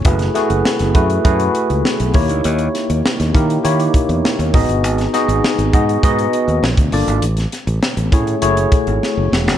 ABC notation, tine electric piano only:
X:1
M:4/4
L:1/16
Q:1/4=100
K:F#dor
V:1 name="Tine electric piano"
[A,EFGB]2 [A,EFGB]3 z [A,EFGB]2 [A,EFGB]4 z2 [^A,DE=Gc]2- | [^A,DE=Gc]4 z2 [A,DEG^A]2 [A,DEGc]6 [B,DF^Gd]2- | [B,DFGd]2 [B,DFGd]3 z [B,DFGd]2 [B,DFGd]4 z2 [^A,=D^E=A=d]2 | z6 [A,CEGc]2 [A,EFGc]6 z2 |]